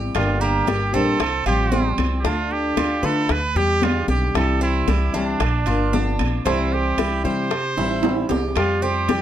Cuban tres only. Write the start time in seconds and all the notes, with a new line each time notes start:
Already playing: G4
0.41 A#3
0.67 G4
0.94 C4
1.46 F4
1.72 C4
2.25 D4
2.77 F4
3.03 B4
3.56 G4
4.08 G4
4.61 C4
4.88 G4
5.14 D4
5.66 F4
5.93 D4
6.46 C4
6.98 E4
7.25 G4
7.77 E4
8.29 G4
8.82 C4
9.09 G4